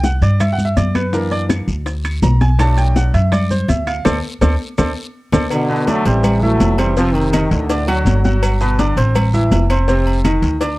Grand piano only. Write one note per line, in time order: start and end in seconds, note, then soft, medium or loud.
0.04 0.22 F#5 medium
0.22 0.40 D5 medium
0.40 0.52 E5 medium
0.53 0.64 F#5 medium
0.65 0.77 E5 medium
0.77 0.94 D5 medium
0.95 1.13 B4 medium
1.13 1.65 E3 medium
1.13 1.65 A#3 medium
1.13 1.66 D4 medium
1.13 1.31 A#4 medium
1.31 1.42 D5 loud
2.23 2.40 A#5 medium
2.41 2.59 G#5 medium
2.59 3.11 F#3 medium
2.59 3.11 A3 medium
2.59 3.11 D4 medium
2.59 2.77 A5 loud
2.77 2.95 G5 medium
2.96 3.14 F#5 medium
3.14 3.32 E5 medium
3.33 3.50 D5 medium
3.51 3.68 C5 medium
3.69 3.86 E5 medium
3.87 4.05 F5 medium
4.05 4.17 A4 loud
4.05 4.17 C5 loud
4.05 4.17 D5 loud
4.41 4.53 A4 loud
4.41 4.53 C5 loud
4.41 4.53 D5 medium
4.78 4.90 A4 loud
4.78 4.90 C5 medium
4.78 4.90 D5 medium
5.33 5.45 A4 loud
5.33 5.45 C5 medium
5.33 5.45 D5 loud
5.69 5.84 B2 medium
5.69 5.84 B3 medium
5.69 5.85 B4 medium
5.87 6.02 D3 medium
5.87 6.03 D4 medium
5.87 6.03 D5 medium
6.06 6.36 C4 medium
6.06 6.36 C5 medium
6.06 6.36 C6 medium
6.42 6.72 E3 medium
6.42 6.72 E4 medium
6.42 6.72 E5 medium
6.79 6.94 C4 medium
6.79 6.94 C5 medium
6.79 6.94 C6 medium
6.97 7.27 C3 medium
6.97 7.27 C4 medium
6.97 7.27 C5 medium
7.33 7.63 D#3 medium
7.33 7.63 D#4 medium
7.33 7.63 D#5 medium
7.70 7.85 D4 medium
7.70 7.85 D5 medium
7.70 7.85 D6 medium
7.88 8.18 F#3 medium
7.88 8.18 F#4 medium
7.88 8.18 F#5 medium
8.25 8.54 F#3 medium
8.25 8.54 F#4 medium
8.25 8.55 F#5 medium
8.61 8.76 B2 medium
8.61 8.76 B3 medium
8.61 8.76 B4 medium
8.79 8.94 D3 medium
8.79 8.94 D4 medium
8.79 8.94 D5 medium
8.97 9.27 C4 medium
8.97 9.27 C5 medium
8.97 9.27 C6 medium
9.33 9.63 E3 medium
9.33 9.64 E4 medium
9.33 9.64 E5 medium
9.70 9.85 C4 medium
9.70 9.85 C5 medium
9.70 9.85 C6 medium
9.88 10.18 C3 medium
9.88 10.18 C4 medium
9.88 10.18 C5 medium
10.24 10.54 D#3 medium
10.24 10.54 D#4 medium
10.24 10.55 D#5 medium
10.61 10.76 D4 medium
10.61 10.76 D5 medium
10.61 10.76 D6 medium